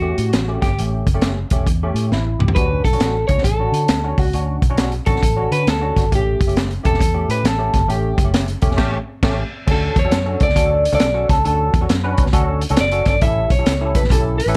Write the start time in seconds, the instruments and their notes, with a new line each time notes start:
Already playing: fingered electric bass E2, clean electric guitar F#4
0.02 tine electric piano A3 C#4 G4
0.18 fingered electric bass A2, closed hi-hat
0.33 fingered electric bass A1, snare, closed hi-hat
0.48 tine electric piano A3 C#4 G4
0.62 fingered electric bass G1, clean electric guitar G4, kick, snare, closed hi-hat
0.79 fingered electric bass A1, tine electric piano A3 C#4 G4, closed hi-hat
1.07 fingered electric bass F#1, kick, closed hi-hat
1.14 tine electric piano A3 C#4 G4
1.22 snare, closed hi-hat
1.50 fingered electric bass E1, tine electric piano A3 C#4 G4, kick, closed hi-hat
1.66 fingered electric bass E2, kick, closed hi-hat
1.83 tine electric piano A3 C#4 G4
1.94 fingered electric bass A2, closed hi-hat
2.11 fingered electric bass A1, tine electric piano E4, snare
2.39 fingered electric bass C#2, tine electric piano G4, mid tom
2.48 floor tom
2.55 fingered electric bass D2, tine electric piano C#4 D4 F#4, clean electric guitar B4, kick, closed hi-hat
2.85 fingered electric bass B1, clean electric guitar A4, kick, closed hi-hat
2.93 tine electric piano C#4 D4 F#4, closed hi-hat
3.00 fingered electric bass A1, snare, closed hi-hat
3.27 fingered electric bass C#2, tine electric piano C#4 D4 F#4, clean electric guitar C#5, kick, closed hi-hat
3.38 snare
3.44 fingered electric bass A1, clean electric guitar A4, kick, closed hi-hat
3.60 tine electric piano C#4 D4 F#4
3.72 fingered electric bass D3, closed hi-hat
3.88 fingered electric bass D2, snare, closed hi-hat
4.03 tine electric piano C#4 D4 F#4
4.18 fingered electric bass C#2, clean electric guitar F#4, kick, open hi-hat
4.33 fingered electric bass D2, tine electric piano C#4 D4 F#4, closed hi-hat
4.62 fingered electric bass B1, kick, closed hi-hat
4.70 tine electric piano C#4 D4 F#4
4.78 snare, closed hi-hat
4.92 closed hi-hat
5.06 fingered electric bass A1, tine electric piano C#4 D4 F#4, clean electric guitar A4, kick, closed hi-hat
5.16 snare
5.22 fingered electric bass A1, kick, closed hi-hat
5.36 tine electric piano C#4 D4 F#4
5.51 fingered electric bass D3, clean electric guitar B4, closed hi-hat
5.67 fingered electric bass D2, clean electric guitar A4, snare, closed hi-hat
5.81 tine electric piano C#4 D4 F#4
5.96 fingered electric bass G1, kick, snare, closed hi-hat
6.12 fingered electric bass A1, tine electric piano A3 C#4 G4, clean electric guitar G4, kick, closed hi-hat
6.41 fingered electric bass F#1, kick, closed hi-hat
6.47 tine electric piano A3 C#4 G4, closed hi-hat
6.57 snare, closed hi-hat
6.71 closed hi-hat
6.83 fingered electric bass E1, tine electric piano A3 C#4 G4, clean electric guitar A4, kick, closed hi-hat
6.94 snare
7.00 fingered electric bass E2, kick, closed hi-hat
7.14 tine electric piano A3 C#4 G4
7.28 fingered electric bass A2, clean electric guitar B4, closed hi-hat
7.44 fingered electric bass A1, clean electric guitar A4, snare, closed hi-hat
7.58 tine electric piano A3 C#4 G4
7.73 fingered electric bass G1, kick, snare, closed hi-hat
7.88 fingered electric bass A1, tine electric piano A3 C#4 G4, clean electric guitar G4, closed hi-hat
8.18 fingered electric bass F#1, kick, closed hi-hat
8.24 tine electric piano A3 C#4 G4
8.34 snare, closed hi-hat
8.48 closed hi-hat
8.62 fingered electric bass E1, tine electric piano A3 C#4 G4, kick, closed hi-hat
8.71 snare
8.77 fingered electric bass A1, tine electric piano A3 C#4 G4, kick, snare, crash
9.23 fingered electric bass A1, tine electric piano A3 C#4 G4, kick, snare, crash
9.67 fingered electric bass D2, tine electric piano C#4 D4 F#4 A4, kick, crash
9.71 clean electric guitar A4
9.96 fingered electric bass E2, clean electric guitar C#5, kick, closed hi-hat
10.05 tine electric piano C#4 D4 F#4 A4
10.11 fingered electric bass F#2, snare, closed hi-hat
10.26 tine electric piano C#4 D4 F#4 A4
10.40 fingered electric bass C#2, clean electric guitar D5, kick, closed hi-hat
10.49 snare
10.56 fingered electric bass D2, tine electric piano C#4 D4 F#4 A4, kick, closed hi-hat
10.85 closed hi-hat
10.92 fingered electric bass C#2, tine electric piano C#4 D4 F#4 A4, clean electric guitar D5, closed hi-hat
11.00 fingered electric bass B1, snare, closed hi-hat
11.14 tine electric piano C#4 D4 F#4 A4
11.29 fingered electric bass C#2, clean electric guitar A4, kick, snare, closed hi-hat
11.45 fingered electric bass D2, tine electric piano C#4 D4 F#4 A4, clean electric guitar A4, closed hi-hat
11.74 fingered electric bass E2, kick, closed hi-hat
11.81 tine electric piano C#4 D4 F#4 A4
11.89 fingered electric bass F#2, snare, closed hi-hat
12.04 tine electric piano C#4 D4 F#4 B4
12.18 fingered electric bass C#2, kick, closed hi-hat
12.26 snare
12.33 fingered electric bass D2, tine electric piano C#4 D4 F#4 A4, kick, closed hi-hat
12.61 closed hi-hat
12.69 fingered electric bass C#2, tine electric piano C#4 D4 F#4 A4, closed hi-hat
12.77 fingered electric bass F#1, clean electric guitar D5, snare, closed hi-hat
12.92 tine electric piano C#4 D4 F#4 A4, closed hi-hat
13.06 fingered electric bass G1, clean electric guitar D5, kick, snare, closed hi-hat
13.21 fingered electric bass A1, tine electric piano C#4 E4 G4 A4, clean electric guitar E5, kick, closed hi-hat
13.50 fingered electric bass B1, clean electric guitar C#5, kick, closed hi-hat
13.58 tine electric piano C#4 E4 G4 A4
13.66 fingered electric bass C#2, snare, closed hi-hat
13.81 tine electric piano C#4 E4 G4 A4
13.95 clean electric guitar B4, kick, closed hi-hat
14.03 fingered electric bass A1, snare
14.10 fingered electric bass B1, tine electric piano C#4 E4 G4 A4, clean electric guitar A4, kick, closed hi-hat
14.38 clean electric guitar B4, closed hi-hat
14.46 fingered electric bass A1, tine electric piano C#4 E4 G4 A4, closed hi-hat